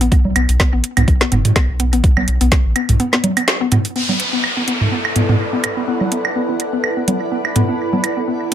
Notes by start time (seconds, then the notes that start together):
0.01 A1 B3, closed hi-hat
0.12 B3, kick, closed hi-hat
0.25 B1, high conga
0.36 B1 B3, closed hi-hat, high woodblock
0.49 B1, closed hi-hat
0.60 B3, kick, snare, closed hi-hat
0.73 A1 B3
0.84 closed hi-hat
0.97 B1 B3, closed hi-hat, mid tom, high woodblock
1.08 B1, kick, closed hi-hat
1.21 B3, snare
1.32 F#1 B3, closed hi-hat, mid tom
1.45 closed hi-hat, mid tom
1.56 B3, kick, snare, closed hi-hat, high woodblock
1.69 B1
1.80 B3, closed hi-hat
1.93 A1 B3, closed hi-hat
2.04 kick, closed hi-hat
2.17 B1 B3, high conga, high woodblock
2.28 B1, closed hi-hat
2.41 B1 B3, closed hi-hat
2.52 B3, kick, snare, closed hi-hat
2.65 A1
2.76 B3, closed hi-hat, high woodblock
2.89 B1, closed hi-hat, mid tom
3.00 B3, closed hi-hat
3.13 B3, snare
3.24 closed hi-hat, high conga
3.37 B3, closed hi-hat, high woodblock
3.48 snare, closed hi-hat
3.61 B3
3.72 B3, closed hi-hat, mid tom
3.85 closed hi-hat
3.96 B3 E4 B4, crash, downlifter
4.06 B1 B3 A4, high conga
4.12 D5
4.20 B1, closed hi-hat
4.33 B1 B3
4.44 high woodblock
4.57 A1 B3
4.68 B3, closed hi-hat
4.73 F#5
4.81 B1, mid tom
4.92 B1 B3
5.05 high woodblock
5.16 F#1 B3, closed hi-hat, mid tom
5.29 B3, mid tom
5.53 B1 B3
5.64 closed hi-hat, high woodblock
5.77 A1 B3
5.88 B3
6.01 B1, high conga
6.12 B1 B3, closed hi-hat
6.25 B1, high woodblock
6.36 B3
6.49 A1 B3
6.60 closed hi-hat
6.73 B1 B3
6.84 B1, high woodblock
6.97 B3
7.08 F#1 B3, closed hi-hat, high conga
7.32 B3
7.45 B1, high woodblock
7.56 B3, closed hi-hat, mid tom
7.69 A1 B3
7.93 B1 B3, high conga
8.04 B1, closed hi-hat, high woodblock
8.17 B1 B3
8.28 B3
8.41 A1
8.47 E5